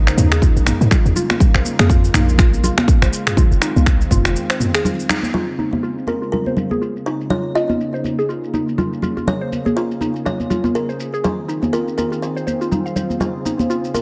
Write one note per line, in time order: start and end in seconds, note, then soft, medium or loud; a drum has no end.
0.00 0.12 A#1 medium
0.00 3.33 C#3 medium
0.00 1.36 G#3 medium
0.00 3.33 A#3 medium
0.00 1.38 D#4 medium
0.07 0.17 C5 medium
0.07 finger snap medium
0.07 shaker soft
0.17 0.49 D#2 loud
0.17 mid tom medium
0.17 high conga medium
0.17 shaker medium
0.32 0.42 G#4 loud
0.32 finger snap medium
0.32 shaker soft
0.42 0.55 F4 medium
0.42 kick loud
0.42 shaker soft
0.56 0.72 A#1 medium
0.56 shaker soft
0.67 0.79 D#4 medium
0.67 finger snap medium
0.67 mid tom medium
0.67 high conga medium
0.67 shaker medium
0.81 0.88 G#2 loud
0.81 shaker soft
0.91 1.04 F4 loud
0.91 finger snap medium
0.91 kick loud
0.91 low conga loud
0.91 shaker medium
1.05 1.13 D#2 medium
1.05 shaker soft
1.16 1.29 F4 loud
1.16 low conga medium
1.16 shaker medium
1.30 1.39 F4 medium
1.30 finger snap medium
1.30 high conga medium
1.30 shaker soft
1.40 5.30 G#3 medium
1.40 5.30 F4 medium
1.40 kick loud
1.40 low conga loud
1.40 shaker soft
1.55 1.62 A#1 medium
1.55 1.65 C5 medium
1.55 finger snap medium
1.65 high conga medium
1.65 shaker medium
1.79 2.09 F2 medium
1.79 1.89 G#4 loud
1.79 finger snap medium
1.79 high conga loud
1.79 shaker soft
1.90 2.03 F4 medium
1.90 kick loud
1.90 shaker soft
2.04 shaker soft
2.14 2.71 A#1 loud
2.14 2.27 D#4 medium
2.14 finger snap medium
2.14 mid tom loud
2.14 high conga medium
2.14 shaker medium
2.29 shaker soft
2.38 2.52 F4 loud
2.38 finger snap medium
2.38 kick loud
2.38 low conga medium
2.38 shaker soft
2.53 high conga medium
2.53 shaker soft
2.64 2.77 F4 loud
2.64 low conga loud
2.64 shaker medium
2.78 2.87 F4 medium
2.78 finger snap medium
2.78 high conga loud
2.78 shaker soft
2.88 kick loud
2.88 shaker medium
3.02 3.09 A#1 medium
3.02 3.12 C5 medium
3.02 finger snap medium
3.02 shaker soft
3.13 shaker medium
3.27 3.37 G#4 loud
3.27 finger snap medium
3.27 mid tom medium
3.27 shaker soft
3.37 5.32 D#3 medium
3.37 5.32 C4 medium
3.37 3.50 F4 medium
3.37 kick loud
3.37 low conga loud
3.37 shaker medium
3.51 3.59 F1 medium
3.51 shaker soft
3.62 3.75 D#4 medium
3.62 finger snap medium
3.62 shaker medium
3.76 4.06 C2 medium
3.76 high conga medium
3.76 shaker soft
3.86 3.99 F4 loud
3.86 finger snap medium
3.86 kick loud
3.86 shaker soft
4.01 shaker soft
4.11 4.36 F1 loud
4.11 4.24 F4 loud
4.11 kick medium
4.11 mid tom loud
4.11 high conga medium
4.11 shaker medium
4.25 4.34 F4 medium
4.25 finger snap medium
4.25 shaker soft
4.36 shaker soft
4.50 4.60 C5 medium
4.50 finger snap medium
4.50 shaker soft
4.60 mid tom medium
4.60 high conga medium
4.60 shaker medium
4.75 4.84 G#4 loud
4.75 finger snap medium
4.75 shaker soft
4.85 4.98 F4 medium
4.85 low conga loud
4.85 shaker medium
5.00 shaker soft
5.09 5.22 D#4 medium
5.09 finger snap medium
5.09 low conga medium
5.09 shaker medium
5.23 high conga medium
5.23 shaker soft
5.34 11.20 C#3 medium
5.34 7.29 G#3 medium
5.34 7.29 C4 medium
5.34 7.29 F4 medium
5.34 5.47 F4 medium
5.34 6.04 C5 medium
5.34 low conga loud
5.34 shaker soft
5.59 5.71 D#4 medium
5.59 high conga medium
5.59 shaker medium
5.73 high conga loud
5.73 shaker soft
5.83 5.96 F4 loud
5.83 shaker soft
5.98 shaker soft
6.07 6.21 F4 loud
6.07 6.31 A#4 medium
6.07 high conga medium
6.07 shaker medium
6.22 6.31 F4 medium
6.22 shaker soft
6.32 7.02 A#4 medium
6.32 low conga medium
6.32 shaker soft
6.46 6.56 C5 medium
6.46 high conga medium
6.46 shaker soft
6.57 low conga medium
6.57 shaker medium
6.71 6.81 G#4 loud
6.71 high conga medium
6.71 shaker soft
6.82 6.94 F4 medium
6.82 shaker soft
6.97 shaker soft
7.06 7.19 D#4 medium
7.06 7.29 C5 medium
7.06 shaker medium
7.21 shaker soft
7.30 11.20 A#3 medium
7.30 9.25 D#4 medium
7.30 7.43 F4 loud
7.30 13.17 G#4 medium
7.30 7.56 C#5 loud
7.30 low conga loud
7.30 shaker soft
7.55 7.68 F4 medium
7.55 8.99 D#5 medium
7.55 shaker medium
7.69 7.79 F4 medium
7.69 high conga medium
7.69 shaker soft
7.81 shaker medium
7.94 8.04 C5 medium
7.94 shaker soft
8.04 high conga medium
8.04 shaker medium
8.19 8.28 G#4 loud
8.19 shaker soft
8.29 8.42 F4 medium
8.29 shaker medium
8.44 shaker soft
8.54 8.66 D#4 medium
8.54 high conga medium
8.54 shaker medium
8.69 shaker soft
8.78 8.91 F4 loud
8.78 low conga loud
8.78 shaker medium
8.93 shaker soft
9.02 9.16 F4 loud
9.02 low conga medium
9.02 shaker medium
9.17 9.26 F4 medium
9.17 high conga medium
9.17 shaker soft
9.27 11.22 F4 medium
9.27 9.78 C#5 loud
9.27 low conga loud
9.27 shaker soft
9.41 9.51 C5 medium
9.52 high conga medium
9.52 shaker medium
9.66 9.76 G#4 loud
9.66 high conga loud
9.66 shaker soft
9.76 9.89 F4 medium
9.76 10.27 C5 loud
9.76 shaker soft
9.91 shaker soft
10.01 10.14 D#4 medium
10.01 high conga medium
10.01 shaker medium
10.16 shaker soft
10.25 10.38 F4 loud
10.25 10.77 C#5 medium
10.25 low conga medium
10.25 shaker medium
10.40 high conga medium
10.40 shaker soft
10.50 10.63 F4 medium
10.50 low conga medium
10.50 shaker medium
10.64 10.74 F4 medium
10.64 high conga loud
10.64 shaker soft
10.75 11.26 A#4 medium
10.75 shaker medium
10.89 10.99 C5 medium
10.89 shaker soft
11.00 shaker medium
11.14 11.23 G#4 loud
11.14 shaker soft
11.24 13.19 D#3 medium
11.24 14.02 C4 medium
11.24 14.02 F4 medium
11.24 11.37 F4 medium
11.24 11.70 C5 medium
11.24 low conga loud
11.24 shaker soft
11.48 11.61 D#4 medium
11.48 shaker medium
11.63 high conga loud
11.63 shaker soft
11.73 11.86 F4 loud
11.73 11.97 A#4 medium
11.73 shaker medium
11.88 shaker soft
11.98 12.11 F4 loud
11.98 12.23 A#4 medium
11.98 high conga medium
11.98 shaker medium
12.12 12.21 F4 medium
12.12 shaker soft
12.22 12.92 C5 medium
12.22 shaker soft
12.36 12.46 C5 medium
12.36 shaker soft
12.47 12.60 C5 medium
12.47 high conga medium
12.47 shaker medium
12.61 12.70 F4 medium
12.61 shaker soft
12.71 12.79 D#4 medium
12.71 low conga loud
12.71 shaker medium
12.86 12.95 F5 medium
12.86 shaker soft
12.96 13.10 C5 medium
12.96 low conga medium
12.96 shaker medium
13.10 high conga medium
13.10 shaker soft
13.20 14.02 C#3 medium
13.20 13.33 F4 medium
13.20 14.02 G#4 medium
13.20 13.97 C5 medium
13.20 low conga medium
13.20 shaker soft
13.45 13.58 D#4 medium
13.45 high conga medium
13.45 shaker medium
13.59 high conga medium
13.59 shaker soft
13.70 13.83 F4 loud
13.70 shaker soft
13.85 shaker soft
13.94 14.02 F4 loud
13.94 14.02 A#4 medium
13.94 high conga medium
13.94 shaker medium